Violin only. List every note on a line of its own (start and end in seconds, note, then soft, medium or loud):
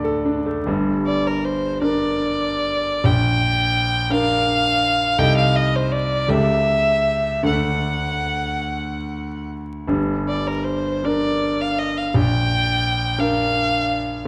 1.06 1.29 D5 medium
1.27 1.46 A#4 medium
1.44 1.82 C5 medium
1.82 3.07 D5 loud
3.06 4.13 G5 loud
4.11 5.20 F5 loud
5.19 5.36 G5 loud
5.37 5.57 F5 loud
5.56 5.77 D#5 loud
5.76 5.93 C5 medium
5.92 6.31 D5 medium
6.30 7.46 E5 loud
7.46 9.46 F#5 medium
10.28 10.49 D5 medium
10.47 10.66 A#4 medium
10.64 11.06 C5 medium
11.05 11.62 D5 medium
11.61 11.80 F5 medium
11.79 11.99 D#5 medium
11.97 12.17 F5 medium
12.16 13.21 G5 loud
13.19 14.26 F5 loud